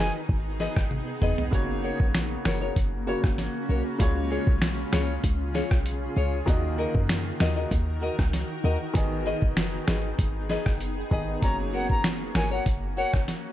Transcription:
Already playing: D#3 B3 D#4 G#4 D#5
0.00 F#1 B4 D#5 G#5
0.29 G#1, kick
0.59 G#4 B4 D#5, snare
0.76 G#1, kick, cross-stick
0.91 high tom
1.07 muted nylon-string guitar stroke
1.21 F1 G#4 B4 D#5, mid tom
1.38 floor tom
1.51 F#1 C#3 A#3 C#4 F#4 C#5, kick, closed hi-hat
1.83 F#4 A#4 C#5
2.00 A#1, kick
2.15 finger snap, snare, closed hi-hat
2.45 F#1 F#4 A#4 C#5, finger snap, snare
2.61 F#4 A#4 C#5
2.76 F#1, kick, closed hi-hat
3.07 C#3 A#3 F#4 A#4 C#5
3.23 G#1, muted nylon-string guitar stroke, kick, cross-stick
3.38 snare, closed hi-hat
3.69 B1 F#4 A#4 C#5
3.85 muted nylon-string guitar stroke
3.98 C#2 C#3 G#3 F4 G#4 C#5, kick, closed hi-hat
4.30 F4 G#4 C#5
4.47 B1, kick
4.62 finger snap, snare, closed hi-hat
4.92 C#2 F4 G#4 C#5, finger snap, snare
5.24 C#2, kick, closed hi-hat
5.54 F4 G#4 C#5, snare
5.71 B1, kick, cross-stick
5.86 closed hi-hat
6.16 C#2 F4 G#4 C#5
6.46 D#2 D#3 A#3 D#4 F#4 A#4 D#5, kick, closed hi-hat
6.78 F#4 A#4 D#5
6.95 F#2, kick
7.09 finger snap, snare, closed hi-hat
7.40 D#2 F#4 A#4 D#5, finger snap, snare
7.56 F#4 A#4 D#5
7.71 D#2, kick, closed hi-hat
8.02 F#4 A#4 D#5
8.18 C#2, muted nylon-string guitar stroke, kick, cross-stick
8.33 snare, closed hi-hat
8.64 D#2 F#4 A#4 D#5
8.80 muted nylon-string guitar stroke
8.93 G#1 D#3 B3 G#4 D#5, kick, closed hi-hat
9.26 G#4 B4 D#5
9.42 F#1, kick
9.57 finger snap, snare, closed hi-hat
9.87 G#1 G#4 B4 D#5, finger snap, snare
10.19 G#1, kick, closed hi-hat
10.49 G#4 B4 D#5, snare
10.66 F#1, kick, cross-stick
10.80 closed hi-hat
11.11 G#1 D#3 B3 G#4 B4 D#5, kick
11.41 F#1 F#3 A#3 C#4 F#4 A#4 C#5 A#5, kick, closed hi-hat
11.73 F#4 A#4 C#5 F#5
11.90 A#5, kick
12.04 finger snap, snare, closed hi-hat
12.35 G#1 F#4 A#4 C#5 G#5, finger snap, snare
12.51 F#4 A#4 C#5 F#5
12.66 F#1, kick, closed hi-hat
12.97 F#4 A#4 C#5 F#5
13.13 F#1, kick, cross-stick
13.28 snare, closed hi-hat

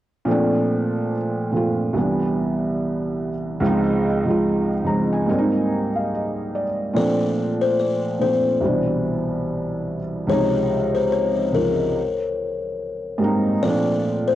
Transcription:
0.25 A#2 F3 A3
0.29 C4 D4
1.51 A#2 F3 A3
1.56 C4 F4
1.93 C2 E3 G3
1.98 B3 D4
3.60 C#2 F3 G#3
3.64 C4 D#4
4.25 C#2 F3 G#3 C4
4.30 F4
4.84 C#2 F3 G#3 A#5
4.88 C4 F4
5.12 G#5
5.26 G#2 G3 A#3 G#5
5.30 C4 D4
5.38 D#4
5.96 F5
6.15 D#5
6.55 D5
6.94 A#2 F3 A3 C4 D5
6.99 D4
7.62 C5
7.80 D5
8.19 A#2 F3 A3 C5
8.23 C4 F4
8.61 C2 E3 G3
8.65 B2 D4
10.27 C#2 F3 G#3 C#5
10.31 C3 D#4
10.95 C5
11.12 C#5
11.52 C#2 F3 G#3 A#4
11.57 C4 F4
13.18 G#2 G3 A#3
13.22 C4 D#4
13.62 A#2 F3 A3 D5
13.67 C4 D4
14.28 C5

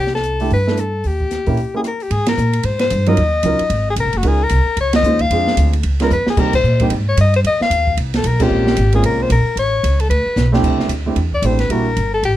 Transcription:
Already playing: C2
0.00 G4
0.07 snare
0.15 A4, snare
0.23 closed hi-hat
0.40 A3 D4 E4 G4, open hi-hat
0.50 G2 B4, open hi-hat
0.67 A3 D4 E4 A4, snare
0.77 A4, cross-stick, closed hi-hat
1.04 D#2 G4, open hi-hat
1.21 kick
1.31 snare, closed hi-hat
1.46 A#2 A#3 C#4 E4 G4, kick, open hi-hat
1.57 open hi-hat
1.74 A#3 C#4 E4 G4 G#4
1.84 A#4, cross-stick, closed hi-hat
2.00 G4, open hi-hat
2.11 G#2 G#4, ride
2.26 A#4, snare, ride
2.37 A#2, hi-hat pedal
2.53 ride
2.63 G#2 C5, ride
2.79 C5, snare, ride
2.90 G2, hi-hat pedal, ride
3.06 F#3 C#4 D#4 F4 A#4 D#5, ride
3.17 D#2, ride
3.43 C#2 F#3 C#4 D#4 F4 A#4, hi-hat pedal, ride
3.59 muted upright bass stroke, ride
3.70 G#1, ride
3.90 G#4
3.96 C2, hi-hat pedal, ride
4.00 A#4
4.05 G#1
4.13 F#1, ride
4.17 F#4
4.23 C#2 G#3 C#4 D#4 F4 A#4, ride
4.28 G#4
4.44 A#4
4.49 C2, hi-hat pedal, ride
4.66 muted upright bass stroke
4.76 C#2, ride
4.81 C#5
4.93 D#5, snare, ride
5.03 D#2 G#3 C#4 D#4 F4 C5, hi-hat pedal
5.19 F5, kick, ride
5.30 F2 G#3 C4 D4 F4 G#4, ride
5.47 snare
5.57 D2, hi-hat pedal, ride
5.73 ride
5.83 C#2, ride
6.00 G#3 B3 C#4 F4 A#4, snare, ride
6.10 F2 B4, hi-hat pedal
6.27 G#4, muted upright bass stroke, snare
6.37 C3 G3 A#3 C4 D#4 G4 A#4, kick, crash
6.53 C5, kick, crash
6.63 A#2, hi-hat pedal
6.80 G3 A#3 C4 D#4 G4, kick, ride
6.90 G#2, ride
7.09 C#5
7.17 G2 D#5, hi-hat pedal, ride
7.34 C5, ride
7.44 F2 D#5, ride
7.60 F5, muted upright bass stroke, snare
7.70 D#2, hi-hat pedal, ride
7.87 kick
7.97 C2, ride
8.14 A4, snare, ride
8.24 B1 A#4, hi-hat pedal, ride
8.40 G#3 A#3 C4 C#4 F4 G4, kick, crash
8.50 A#1
8.67 snare
8.77 G#1, hi-hat pedal, ride
8.93 G#3 A#3 C4 C#4 F4 G#4, ride
9.03 C2 A#4, ride
9.23 C5
9.30 A#1 A#4, hi-hat pedal, ride
9.45 muted upright bass stroke
9.56 A1 C#5, ride
9.83 C#2, hi-hat pedal, ride
10.00 A4, ride
10.09 D2 B4, ride
10.26 muted upright bass stroke
10.36 B1, snare, hi-hat pedal
10.52 A3 C4 D4 E4 G4, snare
10.63 C2, kick, crash
10.80 snare
10.88 D2, hi-hat pedal, ride
11.06 A3 C4 D4 E4 G4
11.16 E2, ride
11.33 D5, kick
11.42 A1 A3 C4 D4 E4 G4 C5, hi-hat pedal, ride
11.59 B4, snare, ride
11.69 A#1 G3 A#3 D4 E4 F#4 A#4, ride
11.97 G1, hi-hat pedal, ride
12.14 A4
12.23 A1 G4, ride

